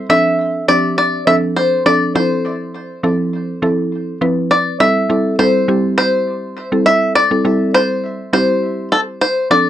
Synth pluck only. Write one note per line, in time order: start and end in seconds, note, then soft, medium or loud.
0.09 0.60 F3 medium
0.09 0.60 C4 medium
0.09 0.60 D4 medium
0.09 0.60 A4 medium
0.68 1.18 F3 medium
0.68 1.18 C4 medium
0.68 1.18 D4 medium
0.68 1.19 G4 loud
1.27 1.77 F3 medium
1.27 1.77 C4 medium
1.27 1.77 D4 medium
1.27 1.77 A4 loud
1.86 2.14 F3 medium
1.86 2.14 C4 medium
1.86 2.15 D4 medium
1.86 2.14 A4 medium
2.15 2.90 F3 medium
2.15 2.91 C4 medium
2.15 2.91 E4 medium
2.15 2.91 A4 medium
3.03 3.54 F3 medium
3.03 3.54 C4 medium
3.03 3.54 E4 medium
3.03 3.54 A4 medium
3.62 4.12 F3 medium
3.62 4.12 C4 medium
3.62 4.13 E4 medium
3.62 4.13 A4 loud
4.21 4.71 F3 medium
4.21 4.71 C4 medium
4.21 4.71 E4 medium
4.21 4.72 B4 loud
4.80 5.05 G3 medium
4.80 5.05 C4 medium
4.80 5.05 E4 medium
4.80 5.05 A4 medium
5.09 5.34 G3 medium
5.09 5.35 C4 medium
5.09 5.35 E4 medium
5.09 5.35 A4 medium
5.39 5.64 G3 medium
5.39 5.64 C4 medium
5.39 5.64 E4 medium
5.39 5.64 A4 loud
5.68 6.55 G3 medium
5.68 6.55 C4 medium
5.68 6.55 E4 medium
5.68 6.55 G4 loud
6.72 7.21 G3 medium
6.72 7.21 C4 medium
6.72 7.21 E4 medium
6.72 7.21 A4 medium
7.31 7.43 G3 medium
7.31 7.43 C4 medium
7.31 7.43 E4 medium
7.31 7.43 A4 medium
7.45 8.20 G3 medium
7.45 8.20 C4 medium
7.45 8.20 E4 medium
7.45 8.20 A4 loud
8.33 9.33 G3 medium
8.33 9.33 C4 medium
8.33 9.33 E4 medium
8.33 9.33 G4 medium
9.51 9.70 F3 medium
9.51 9.70 C4 medium
9.51 9.70 D4 medium
9.51 9.70 A4 medium